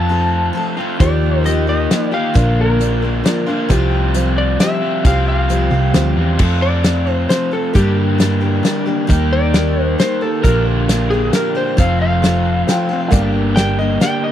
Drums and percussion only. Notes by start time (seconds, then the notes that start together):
1.00 kick, closed hi-hat
1.46 closed hi-hat
1.91 snare, closed hi-hat
2.35 kick, closed hi-hat
2.81 closed hi-hat
3.26 snare, closed hi-hat
3.70 kick, closed hi-hat
4.14 closed hi-hat
4.60 snare, closed hi-hat
5.05 kick, closed hi-hat
5.50 closed hi-hat
5.94 snare, closed hi-hat
6.39 kick, crash
6.84 snare, closed hi-hat
7.30 snare, closed hi-hat
7.75 kick, closed hi-hat
8.20 snare, closed hi-hat
8.65 snare, closed hi-hat
9.10 kick, closed hi-hat
9.54 snare, closed hi-hat
10.00 snare, closed hi-hat
10.44 kick, closed hi-hat
10.89 snare, closed hi-hat
11.33 snare, closed hi-hat
11.78 kick, closed hi-hat
12.24 snare, closed hi-hat
12.68 snare, closed hi-hat
13.12 kick, closed hi-hat
13.57 snare, closed hi-hat
14.01 snare, closed hi-hat